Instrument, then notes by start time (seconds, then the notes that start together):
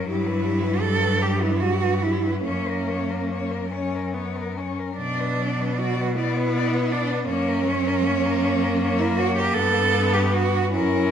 cello
Already playing: F#3
0.08 G2 E4 G4
0.27 B4
0.45 G4
0.63 B4
0.81 G4 A4
1.03 B4
1.22 G4
1.42 E4 B4
1.60 F#4 G4
1.82 B4
2.02 E4 G4
2.26 B4
2.43 F#2 A#3 C#4 C#5
2.68 A#4
2.90 C#5
3.10 A#4
3.31 C#5
3.51 A#4
3.71 C#4 C#5
3.95 A#4
4.14 B3 C#5
4.36 A#4
4.57 C#4 C#5
4.79 A#4
4.95 B2 F#3 D4
5.01 D5
5.20 B4
5.42 D5
5.61 B4
5.79 F#4 D5
6.01 B4
6.16 B3 E4 D5
6.37 B4
6.55 D5
6.74 B4
6.92 D4 D5
7.10 B4
7.26 F#2 A#3 C#4 C#5
7.49 A#4
7.65 F#3 C#5
7.87 A#4
8.03 A#3 C#5
8.25 A#4
8.45 C#5
8.63 A#4
8.84 C#5
8.99 E4 A#4
9.17 F#4 C#5
9.37 G4 A#4
9.54 G2 B3 A4
9.59 B4
10.14 G4
10.32 F#4
10.73 F#2 C#4 E4 A#4